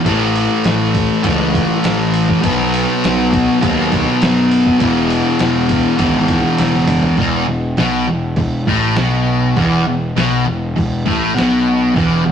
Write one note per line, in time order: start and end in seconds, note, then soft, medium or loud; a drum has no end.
0.04 0.46 A1 medium
0.04 1.22 A2 medium
0.04 1.23 E3 loud
0.04 kick loud
0.04 ride loud
0.09 1.24 A3 loud
0.35 ride medium
0.64 1.06 A1 medium
0.64 snare loud
0.64 ride loud
0.95 kick medium
0.95 ride medium
1.23 1.65 C#2 loud
1.23 2.41 A2 medium
1.23 2.42 E3 medium
1.23 kick loud
1.23 ride loud
1.28 2.43 A3 loud
1.55 kick medium
1.55 ride medium
1.84 2.25 A1 medium
1.84 snare loud
1.84 ride loud
2.14 ride medium
2.29 kick medium
2.42 2.84 B1 loud
2.42 3.59 B2 medium
2.42 3.61 F#3 loud
2.42 kick loud
2.42 ride loud
2.47 3.65 B3 loud
2.60 snare soft
2.74 ride medium
3.04 3.45 B1 medium
3.04 snare loud
3.04 ride loud
3.33 kick loud
3.33 ride medium
3.61 4.03 D#2 loud
3.61 4.78 B2 medium
3.61 4.80 F#3 medium
3.61 kick loud
3.61 ride loud
3.65 7.15 B3 loud
3.92 kick medium
3.92 snare soft
3.92 ride medium
4.22 4.63 F#2 medium
4.22 snare loud
4.22 ride loud
4.51 ride medium
4.66 kick medium
4.78 5.22 E1 loud
4.78 5.96 E2 medium
4.78 5.98 B2 loud
4.78 kick loud
4.78 ride loud
4.83 5.99 E3 loud
5.10 ride medium
5.39 5.81 E1 medium
5.39 snare loud
5.39 ride loud
5.69 kick loud
5.69 ride medium
5.97 6.40 G#1 loud
5.97 7.16 E2 medium
5.97 7.17 B2 medium
5.97 kick loud
5.97 ride loud
6.02 7.18 E3 loud
6.28 kick medium
6.28 snare soft
6.28 ride medium
6.58 7.00 E1 medium
6.58 snare medium
6.58 ride loud
6.73 high tom medium
6.88 mid tom loud
6.88 ride medium
7.03 floor tom medium
7.17 7.46 E1 medium
7.17 7.47 E2 loud
7.17 kick loud
7.17 crash medium
7.47 7.76 E1 medium
7.47 7.72 E2 medium
7.77 8.05 B1 medium
7.77 8.07 B2 loud
7.77 snare loud
7.77 crash medium
8.08 8.36 E1 medium
8.08 8.32 E2 medium
8.36 8.65 E1 medium
8.36 8.62 E2 medium
8.36 kick medium
8.36 crash medium
8.67 8.95 A1 loud
8.67 8.97 A2 loud
8.67 kick medium
8.96 9.53 B1 medium
8.96 9.56 B2 loud
8.96 snare loud
8.96 crash medium
9.56 9.85 E1 medium
9.56 9.85 E2 loud
9.56 kick loud
9.56 crash medium
9.87 10.14 E1 medium
9.87 10.11 E2 medium
10.16 10.45 B1 loud
10.16 10.45 B2 medium
10.16 snare loud
10.16 crash medium
10.46 10.75 E1 medium
10.46 10.70 E2 medium
10.76 11.05 E1 medium
10.76 11.00 E2 medium
10.76 kick medium
10.76 crash medium
11.06 11.34 A1 medium
11.06 11.35 A2 loud
11.06 kick loud
11.35 11.93 B1 loud
11.35 11.94 B2 loud
11.35 snare loud
11.35 crash medium
11.94 12.24 E1 loud
11.94 12.24 E2 loud
11.94 kick loud
11.94 crash medium
12.25 12.32 E1 medium
12.25 12.32 E2 medium